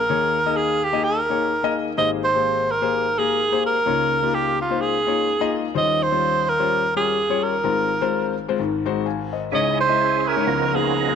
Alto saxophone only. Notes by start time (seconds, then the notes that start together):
Already playing: A#4
0.56 G#4
0.84 G4
1.04 A#4
1.98 D#5
2.24 C5
2.71 A#4
3.19 G#4
3.66 A#4
4.35 G4
4.61 F4
4.81 G#4
5.77 D#5
6.03 C5
6.49 A#4
6.97 G#4
7.43 A#4
9.54 D#5
9.81 C5
10.28 A#4
10.76 G#4